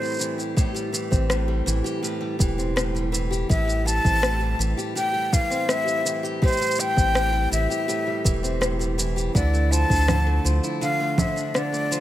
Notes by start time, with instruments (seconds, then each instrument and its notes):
Already playing: steel-string acoustic guitar A2 E3 C4 G4, flute C5
0.02 steel-string acoustic guitar G3, shaker
0.05 shaker
0.07 shaker
0.10 shaker
0.12 shaker
0.14 shaker
0.17 shaker
0.19 steel-string acoustic guitar E3, shaker
0.21 shaker
0.38 steel-string acoustic guitar G4, shaker
0.57 steel-string acoustic guitar A2 G4, kick, shaker
0.75 steel-string acoustic guitar G3, shaker
0.93 steel-string acoustic guitar E3, shaker
1.11 analog synth bass A1, steel-string acoustic guitar C4, kick, shaker
1.30 steel-string acoustic guitar A2, cross-stick, shaker
1.48 steel-string acoustic guitar G3
1.66 analog synth bass A1, steel-string acoustic guitar E3, shaker
1.84 steel-string acoustic guitar G4, shaker
2.03 steel-string acoustic guitar A2 G4, shaker
2.21 steel-string acoustic guitar G3
2.39 analog synth bass E1, steel-string acoustic guitar E3, kick, shaker
2.58 steel-string acoustic guitar C4, shaker
2.76 steel-string acoustic guitar A2, cross-stick, shaker
2.95 steel-string acoustic guitar G3, shaker
3.12 steel-string acoustic guitar E3, shaker
3.31 steel-string acoustic guitar G4, shaker
3.49 analog synth bass A1, steel-string acoustic guitar A2 G4, flute E5, kick, shaker
3.68 steel-string acoustic guitar G3, shaker
3.86 steel-string acoustic guitar E3, flute A5, shaker
4.04 analog synth bass A1, steel-string acoustic guitar C4, kick, shaker
4.22 steel-string acoustic guitar A2, cross-stick, shaker
4.41 steel-string acoustic guitar G3
4.59 analog synth bass A1, steel-string acoustic guitar E3, shaker
4.77 steel-string acoustic guitar G4, shaker
4.95 steel-string acoustic guitar A2 G4, flute G5, shaker
5.14 steel-string acoustic guitar G3
5.32 steel-string acoustic guitar E3, flute F5, kick, shaker
5.50 steel-string acoustic guitar C4, shaker
5.68 steel-string acoustic guitar A2, flute E5, cross-stick, shaker
5.86 steel-string acoustic guitar G3, shaker
6.05 steel-string acoustic guitar E3, shaker
6.23 steel-string acoustic guitar G4, shaker
6.42 steel-string acoustic guitar A2 G4, flute C5, kick, shaker
6.48 shaker
6.52 shaker
6.57 steel-string acoustic guitar G3, shaker
6.62 shaker
6.66 shaker
6.71 shaker
6.75 steel-string acoustic guitar E3, shaker
6.80 flute G5, shaker
6.96 analog synth bass A1, steel-string acoustic guitar C4, kick, shaker
7.15 steel-string acoustic guitar A2, cross-stick, shaker
7.33 steel-string acoustic guitar G3
7.51 analog synth bass A1, steel-string acoustic guitar E3, flute E5, shaker
7.70 steel-string acoustic guitar G4, shaker
7.88 steel-string acoustic guitar A2 G4, shaker
8.07 steel-string acoustic guitar G3
8.24 analog synth bass E1, steel-string acoustic guitar E3, kick, shaker
8.43 steel-string acoustic guitar C4, shaker
8.61 steel-string acoustic guitar A2, cross-stick, shaker
8.79 steel-string acoustic guitar G3, shaker
8.98 steel-string acoustic guitar E3, shaker
9.16 steel-string acoustic guitar G4, shaker
9.34 analog synth bass D2, steel-string acoustic guitar D3 E4, flute D5, kick, shaker
9.54 steel-string acoustic guitar A3, shaker
9.71 steel-string acoustic guitar F3, flute A5, shaker
9.90 analog synth bass D2, steel-string acoustic guitar D4, kick, shaker
9.94 shaker
9.96 shaker
9.98 shaker
10.01 shaker
10.03 shaker
10.05 shaker
10.07 steel-string acoustic guitar D3, cross-stick, low conga, shaker
10.09 shaker
10.27 steel-string acoustic guitar A3
10.45 analog synth bass D2, steel-string acoustic guitar F3, shaker
10.63 steel-string acoustic guitar E4, shaker
10.81 steel-string acoustic guitar D3, flute F5, shaker
11.00 steel-string acoustic guitar A3
11.18 steel-string acoustic guitar F3, flute E5, kick, low conga, shaker
11.36 steel-string acoustic guitar D4, shaker
11.54 steel-string acoustic guitar D3, flute D5, cross-stick, shaker
11.72 steel-string acoustic guitar A3, shaker
11.91 steel-string acoustic guitar F3, shaker